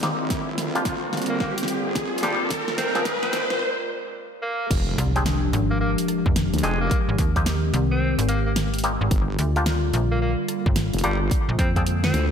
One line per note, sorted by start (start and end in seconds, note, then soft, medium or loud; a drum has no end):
0.00 0.18 G#1 loud
0.00 0.28 D#3 medium
0.00 0.26 G#3 medium
0.00 0.11 A#3 medium
0.00 0.28 C4 medium
0.00 0.30 C4 medium
0.00 0.11 C4 medium
0.00 0.11 D#4 medium
0.00 2.51 F4 medium
0.00 0.26 G4 medium
0.00 0.11 G4 medium
0.00 2.51 A#4 medium
0.00 2.51 D5 medium
0.00 snare medium
0.00 closed hi-hat medium
0.00 riser medium
0.20 0.29 G#1 loud
0.30 0.56 G1 loud
0.30 3.57 D3 medium
0.30 2.48 G3 medium
0.30 3.57 A#3 medium
0.30 3.61 C4 medium
0.30 3.57 F4 medium
0.30 kick loud
0.30 snare medium
0.30 closed hi-hat medium
0.58 1.11 D2 loud
0.58 snare medium
0.58 closed hi-hat medium
0.75 0.83 A#3 medium
0.75 0.83 D4 medium
0.75 0.83 F4 medium
0.75 0.83 G4 medium
0.75 closed hi-hat soft
0.85 kick loud
0.85 snare medium
0.85 closed hi-hat medium
1.13 1.55 A#1 loud
1.13 snare medium
1.13 closed hi-hat soft
1.17 closed hi-hat soft
1.22 closed hi-hat soft
1.26 1.37 A#3 medium
1.26 closed hi-hat medium
1.40 1.51 A#3 medium
1.40 kick medium
1.40 snare medium
1.58 closed hi-hat medium
1.63 snare medium
1.68 closed hi-hat medium
1.85 2.10 G1 loud
1.95 kick loud
1.95 snare medium
1.95 closed hi-hat medium
2.13 2.21 F1 loud
2.18 closed hi-hat medium
2.23 2.49 G1 medium
2.23 2.37 G3 medium
2.23 2.31 A#3 medium
2.23 2.31 D4 medium
2.23 2.31 F4 medium
2.23 2.31 G4 medium
2.23 snare medium
2.23 closed hi-hat medium
2.50 3.59 G#3 medium
2.50 kick medium
2.50 snare medium
2.50 closed hi-hat medium
2.68 2.76 A#1 loud
2.68 3.61 F4 medium
2.68 snare medium
2.76 3.31 F2 loud
2.76 2.89 C4 medium
2.76 3.60 A#4 medium
2.76 snare loud
2.76 closed hi-hat medium
2.95 3.02 C4 medium
2.95 3.03 C4 medium
2.95 3.03 D4 medium
2.95 3.03 F4 medium
2.95 3.03 G#4 medium
2.95 snare medium
2.95 closed hi-hat soft
3.05 kick loud
3.05 snare loud
3.05 closed hi-hat medium
3.22 3.44 C4 medium
3.22 snare medium
3.33 3.48 D2 medium
3.33 snare loud
3.33 closed hi-hat medium
3.50 3.61 A#1 loud
3.50 snare medium
4.43 4.70 A#3 loud
4.70 4.97 F1 loud
4.70 6.88 F3 medium
4.70 9.07 G#3 medium
4.70 6.89 D4 medium
4.70 9.07 G4 medium
4.70 kick loud
4.70 closed hi-hat medium
4.70 crash loud
4.70 impact medium
4.98 5.52 C2 loud
4.98 cross-stick soft
4.98 closed hi-hat medium
5.16 5.23 C4 medium
5.16 5.24 D4 medium
5.16 5.24 G4 medium
5.16 5.24 G#4 medium
5.16 closed hi-hat soft
5.26 snare loud
5.26 closed hi-hat medium
5.53 5.95 G#1 medium
5.53 closed hi-hat medium
5.71 5.77 A#3 medium
5.81 5.92 A#3 medium
5.98 closed hi-hat medium
6.08 cross-stick soft
6.08 closed hi-hat medium
6.26 6.51 F1 loud
6.26 kick loud
6.36 snare loud
6.36 closed hi-hat medium
6.53 6.62 D2 loud
6.53 closed hi-hat medium
6.58 closed hi-hat medium
6.63 6.89 F1 loud
6.63 6.77 G#3 medium
6.63 6.72 C4 medium
6.63 6.72 D4 medium
6.63 6.72 G4 medium
6.63 6.72 G#4 medium
6.63 cross-stick soft
6.63 closed hi-hat medium
6.81 6.98 A#3 medium
6.91 9.09 D#3 medium
6.91 9.09 C4 medium
6.91 kick loud
6.91 closed hi-hat medium
7.09 7.17 G#1 loud
7.18 7.72 D#2 loud
7.18 kick loud
7.18 cross-stick soft
7.18 closed hi-hat medium
7.36 7.44 A#3 medium
7.36 7.44 C4 medium
7.36 7.44 D#4 medium
7.36 7.44 G4 medium
7.36 kick medium
7.36 closed hi-hat soft
7.46 snare loud
7.46 closed hi-hat medium
7.74 8.16 C2 loud
7.74 closed hi-hat medium
7.91 8.12 C4 medium
8.19 8.98 G#1 loud
8.19 closed hi-hat medium
8.29 8.40 A#3 medium
8.29 closed hi-hat medium
8.46 8.53 A#3 medium
8.56 snare loud
8.56 closed hi-hat medium
8.74 closed hi-hat medium
8.78 closed hi-hat medium
8.84 8.92 A#3 medium
8.84 8.92 C4 medium
8.84 8.92 D#4 medium
8.84 8.92 G4 medium
8.84 closed hi-hat medium
9.01 9.09 G#1 medium
9.11 9.37 G1 loud
9.11 11.29 D3 medium
9.11 11.29 G3 medium
9.11 12.31 A#3 medium
9.11 12.31 F4 medium
9.11 kick loud
9.11 closed hi-hat medium
9.39 9.92 D2 loud
9.39 cross-stick soft
9.39 closed hi-hat medium
9.56 9.64 A#3 medium
9.56 9.64 D4 medium
9.56 9.64 F4 medium
9.56 9.64 G4 medium
9.56 closed hi-hat soft
9.66 snare loud
9.66 closed hi-hat medium
9.94 10.36 A#1 loud
9.94 closed hi-hat medium
10.11 10.18 A#3 medium
10.22 10.33 A#3 medium
10.48 cross-stick soft
10.48 closed hi-hat medium
10.66 10.91 G1 loud
10.66 kick loud
10.76 snare loud
10.76 closed hi-hat medium
10.93 11.02 F1 loud
10.93 closed hi-hat soft
10.99 closed hi-hat medium
11.04 11.30 G1 medium
11.04 11.18 G3 medium
11.04 11.12 A#3 medium
11.04 11.12 D4 medium
11.04 11.12 F4 medium
11.04 11.12 G4 medium
11.04 cross-stick soft
11.04 closed hi-hat medium
11.31 12.31 D3 medium
11.31 12.31 G#3 medium
11.31 kick loud
11.31 closed hi-hat medium
11.49 11.57 A#1 loud
11.59 12.12 F2 loud
11.59 11.70 C4 medium
11.59 kick loud
11.59 cross-stick soft
11.59 closed hi-hat medium
11.76 11.83 C4 medium
11.76 11.84 C4 medium
11.76 11.84 D4 medium
11.76 11.84 F4 medium
11.76 11.84 G#4 medium
11.76 kick medium
11.76 closed hi-hat soft
11.86 closed hi-hat medium
12.04 12.25 C4 medium
12.04 snare loud
12.14 12.31 D2 medium
12.14 snare soft
12.14 closed hi-hat medium